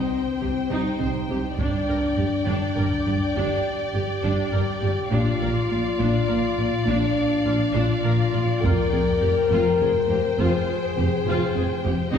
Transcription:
Already playing: french horn section C4, violin section C5 G5
0.41 double bass section C2, cello section C3, viola section G4
0.70 double bass section C2, cello section C3, viola section D#4, french horn section D#4
1.00 double bass section C2, cello section C3, viola section C5
1.29 double bass section C2, cello section C3, viola section G4
1.58 double bass section G1, cello section G2, french horn section D4, viola section D4, violin section D5 G5, taiko
1.88 double bass section G1, cello section G2, viola section A#4
2.16 double bass section G1, cello section G2, viola section G4
2.45 double bass section G1, cello section G2, viola section D4, french horn section D4
2.75 double bass section G1, cello section G2, viola section A#4
2.91 taiko
3.05 double bass section G1, cello section G2, viola section G4
3.36 double bass section G1, cello section G2, viola section D4, french horn section G4
3.93 double bass section G1, cello section G2, viola section G4
4.23 double bass section G1, cello section G2, viola section D4
4.52 double bass section G1, cello section G2, viola section A#4
4.82 double bass section G1, cello section G2, viola section G4
5.11 double bass section A#1, cello section A#2, viola section D4, french horn section F4, violin section D5 F5
5.41 double bass section A#1, cello section A#2, viola section A#4
5.68 double bass section A#1, cello section A#2, viola section F4
5.99 double bass section A#1, cello section A#2, viola section D4
6.28 double bass section A#1, cello section A#2, viola section A#4
6.57 double bass section A#1, cello section A#2, viola section F4
6.86 double bass section A#1, cello section A#2, french horn section D4, viola section D4
7.45 double bass section A#1, cello section A#2, viola section F4
7.73 double bass section A#1, cello section A#2, viola section D4, french horn section F4
8.03 double bass section A#1, cello section A#2, viola section A#4
8.33 double bass section A#1, cello section A#2, viola section F4
8.62 double bass section F1, cello section F2, viola section F4, french horn section A#4, violin section G5, taiko
8.91 double bass section F1, cello section F2, viola section G#4
9.21 double bass section F1, cello section F2, viola section G4
9.50 double bass section F1, cello section F2, viola section F4, violin section C5
9.80 double bass section F1, cello section F2, viola section G#4
10.09 double bass section F1, cello section F2, viola section G4
10.38 double bass section F1, cello section F2, viola section F4, french horn section G#4
10.97 double bass section F1, cello section F2, viola section G4
11.25 double bass section F1, cello section F2, viola section F4
11.55 double bass section F1, cello section F2, viola section G#4
11.84 double bass section F1, cello section F2, viola section G4
12.13 cello section C3, viola section D#4, french horn section G4, violin section D#5 G5

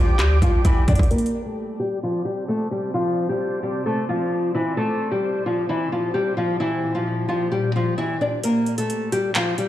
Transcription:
Already playing: 808-style bass A#1, nylon-string guitar F3 F4, ambient pad G4 D5 G5 D6
0.19 808-style bass D2, nylon-string guitar G3 G4, clap, closed hi-hat
0.42 808-style bass A#1, nylon-string guitar F3 F4, kick, closed hi-hat
0.65 808-style bass A#1, nylon-string guitar E3 E4, kick, closed hi-hat
0.88 808-style bass F2, nylon-string guitar D4 D5, kick, closed hi-hat
0.95 808-style bass A#1, kick, closed hi-hat
1.03 closed hi-hat
1.11 nylon-string guitar A#3 A#4, ambient pad C4 C5 D5 A5, closed hi-hat
1.18 closed hi-hat
1.26 closed hi-hat
1.45 nylon-string guitar A3 A4
1.80 nylon-string guitar G3 G4
2.03 nylon-string guitar F3 F4
2.25 nylon-string guitar G3 G4
2.48 nylon-string guitar A3 A4
2.71 nylon-string guitar G3 G4
2.94 nylon-string guitar F3 F4
3.29 nylon-string guitar G3 G4
3.63 nylon-string guitar G3 G4
3.86 nylon-string guitar A3 A4
4.09 nylon-string guitar F3 F4
4.55 nylon-string guitar E3 E4
4.77 ambient pad A#2 G4, nylon-string guitar A3 A4
5.11 nylon-string guitar G3 G4
5.46 nylon-string guitar F3 F4
5.69 nylon-string guitar E3 E4
5.92 nylon-string guitar F3 F4
6.14 nylon-string guitar G3 G4
6.37 nylon-string guitar F3 F4
6.60 nylon-string guitar E3 E4
6.95 nylon-string guitar F3 F4
7.29 nylon-string guitar F3 F4
7.52 nylon-string guitar G3 G4
7.76 nylon-string guitar F3 F4
7.98 nylon-string guitar E3 E4
8.21 nylon-string guitar D4 D5
8.44 nylon-string guitar A#3 A#4, closed hi-hat
8.66 closed hi-hat
8.78 nylon-string guitar A3 A4, closed hi-hat
8.90 closed hi-hat
9.12 nylon-string guitar G3 G4, closed hi-hat
9.35 nylon-string guitar F3 F4, clap, closed hi-hat
9.58 nylon-string guitar G3 G4, closed hi-hat

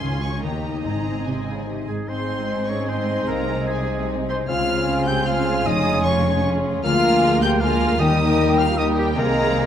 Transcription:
Already playing: harp G#4, violin section G#4 G#5 C6
0.03 cello section C#2, double bass section C#2, harp C#3, viola section C#4 F4
0.23 harp C#4 G#4, violin section C#6
0.43 double bass section D#2, cello section D#2, harp D#3, viola section A#3 D#4, violin section G4 D#5 A#5
0.64 harp A#3 D#4
0.83 double bass section G#1, harp G#2, cello section G#2, viola section C4, violin section G#4 A#5
1.05 harp G#3
1.26 cello section C3, harp C4, violin section G#5
1.46 cello section C#3, harp D#4
1.67 cello section C3, harp G#4
1.88 cello section G#2, french horn section G#3, harp D#4, oboe G#4, clarinet G#4, violin section G#5
2.08 double bass section G#1, harp G#2, cello section G#2, viola section G#3 C4, french horn section C4, bassoon C4, violin section D#4 G#4 C6, oboe C5, clarinet C5, flute section D#5
2.28 harp G#3
2.48 harp C4
2.68 french horn section C#4, harp D#4, clarinet C#5, oboe C#5, violin section C#6
2.88 french horn section C4, harp G#4, oboe C5, clarinet C5, violin section C6
3.09 harp D#4
3.28 double bass section C2, harp C3, cello section C3, french horn section A#3, oboe A#4, clarinet A#4, violin section A#5
3.48 harp C4
3.67 french horn section G#3, harp D#4, oboe G#4, clarinet G#4, violin section G#5
3.89 harp G#4
4.09 harp C5
4.29 french horn section C4, harp G#4, oboe C5, clarinet C5, violin section C6
4.48 double bass section C#2, cello section C#3, harp C#3, viola section G#3 C4, bassoon C4, violin section F4 G#4 F6, french horn section F4, clarinet F5, oboe F5, flute section G#5
4.69 harp C4
4.89 harp G#4
5.07 harp C4, french horn section G4, oboe G5, clarinet G5, violin section G6
5.27 french horn section F4, harp C5, clarinet F5, oboe F5, violin section F6
5.47 harp G#4
5.65 double bass section F1, cello section F2, harp F3, bassoon C#4, viola section C#4, french horn section D#4, oboe D#5, clarinet D#5, violin section D#6
5.87 harp C#4
6.05 french horn section C#4, harp G#4, clarinet C#5, oboe C#5, violin section C#6
6.25 harp C#4
6.45 harp C#5
6.65 harp G#4
6.83 double bass section D2, cello section D2, harp D3, viola section G#3 A#3, bassoon A#3, violin section F4 A#4 F6, french horn section F4, clarinet F5, oboe F5, flute section G#5
7.04 harp A#3
7.23 harp A#4
7.42 french horn section G4, harp G#4, oboe G5, clarinet G5, violin section G6
7.60 viola section G#3 A#3, bassoon A#3, violin section F4 A#4 F6, french horn section F4, harp A#4, oboe F5, clarinet F5, flute section G#5
7.82 harp G#4
7.99 cello section D#2, double bass section D#2, timpani D#3, harp D#3, viola section G3 A#3, bassoon A#3, french horn section D#4, violin section G4 A#4 D#6, oboe D#5, clarinet D#5, flute section G5
8.20 harp D#4
8.40 harp A#4
8.58 french horn section F4, harp G4, oboe F5, clarinet F5, violin section F6
8.77 viola section G3 A#3, bassoon A#3, french horn section D#4, violin section G4 A#4 D#6, oboe D#5, harp D#5, clarinet D#5, flute section G5
8.98 french horn section G3, harp G4, oboe G4, clarinet G4, violin section G5
9.17 double bass section C2, harp C3, cello section C3, bassoon G#3, viola section G#3 C4, french horn section A#3, violin section D#4 G#4 A#5, clarinet A#4, oboe A#4, flute section D#5
9.36 harp G#3
9.56 harp D#4

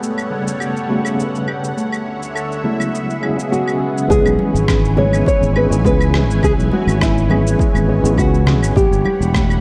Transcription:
Already playing: analog synth pad G3 B3 A4 C#5 F#5, harp B3 G4 B4
0.02 harp A3, shaker
0.18 claves, shaker
0.30 tine electric piano C#3 G3 A3 B3 F#5, harp B3
0.47 shaker
0.60 harp G4, claves, shaker
0.77 shaker
0.88 tine electric piano C#3 G3 A3 B3 F#4, harp A3
1.03 tine electric piano C#3 G3 A3 B3 F#5, claves, shaker
1.18 harp B3, shaker
1.35 shaker
1.48 harp G4, claves
1.64 shaker
1.77 analog synth pad D3 C#5 E5, harp A3, shaker
1.92 claves, shaker
2.06 harp C#4
2.23 shaker
2.35 harp A4, claves, shaker
2.52 shaker
2.63 tine electric piano C#3 F#3 G#3 B3 E4, harp A3
2.80 claves, shaker
2.93 harp B3, analog synth pad B3 G#4, shaker
3.10 shaker
3.21 tine electric piano C#3 F#3 G#3 B3 E4, harp G#4, claves
3.36 tine electric piano C#3 F#3 G#3 B3 C#4, shaker
3.52 harp G#3, nylon-string guitar F#4, shaker
3.68 claves, shaker
3.81 harp B3
3.98 shaker
4.08 fretless electric bass C#2, tine electric piano E3 G#3 B3 C#4 G#4, harp G#3, analog synth pad E4 B4 C#5 G#5, nylon-string guitar G#4, kick, shaker
4.25 fretless electric bass B1, claves, shaker
4.39 harp B3, high conga
4.55 fretless electric bass G#1, shaker
4.68 harp B4, kick, cross-stick, claves, shaker
4.85 shaker
4.96 tine electric piano E3 G#3 B3 C#4 G#4, harp G#3, nylon-string guitar C#5, high conga, low conga
5.13 claves, shaker
5.26 harp B3, nylon-string guitar C#5, kick, shaker
5.42 fretless electric bass G#1, shaker
5.55 tine electric piano E3 G#3 B3 C#4 G#4, harp B4, nylon-string guitar B4, claves
5.69 fretless electric bass G#1, tine electric piano E3 G#3 B3 C#4 G#4, shaker
5.85 fretless electric bass C#2, harp G#3, nylon-string guitar B4, kick, shaker
6.01 claves, shaker
6.14 harp B3, cross-stick
6.29 fretless electric bass G#1, shaker
6.43 fretless electric bass C#2, nylon-string guitar G#4, harp B4, kick, claves, shaker
6.58 fretless electric bass B1, shaker
6.72 harp G#3, nylon-string guitar F#4, high conga
6.87 fretless electric bass G#1, claves, shaker
7.01 harp B3, nylon-string guitar E4, kick, cross-stick, shaker
7.18 shaker
7.29 tine electric piano E3 G#3 B3 C#4 G#4, harp B4, high conga, claves
7.47 shaker
7.59 harp G#3, kick, shaker
7.75 fretless electric bass G#1, claves, shaker
7.88 tine electric piano E3 G#3 B3 C#4 G#4, harp B3
8.02 fretless electric bass G#1, tine electric piano E3 G#3 B3 C#4 G#4, shaker
8.18 fretless electric bass C#2, nylon-string guitar F#4, harp B4, kick, claves, shaker
8.34 shaker
8.47 harp G#3, cross-stick, low conga
8.62 fretless electric bass G#1, claves, shaker
8.76 fretless electric bass A1, analog synth pad G3 F#5 B5, harp B3, nylon-string guitar G4, kick, shaker
8.91 fretless electric bass G1, shaker
9.05 harp G4, high conga, claves
9.21 fretless electric bass E1, shaker
9.34 harp A3, kick, cross-stick, shaker
9.50 claves, shaker

